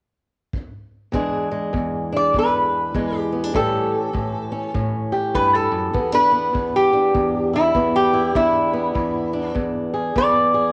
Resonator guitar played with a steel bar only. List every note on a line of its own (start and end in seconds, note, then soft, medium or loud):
2.17 2.35 D5 medium
2.39 3.16 B4 medium
3.16 3.54 G4 medium
3.55 4.72 A4 medium
5.35 5.54 B4 medium
5.55 6.13 A4 medium
6.15 6.73 B4 medium
6.76 7.54 G4 medium
7.56 7.95 E4 medium
7.96 8.35 G4 medium
8.36 9.53 E4 medium
10.18 10.72 D5 loud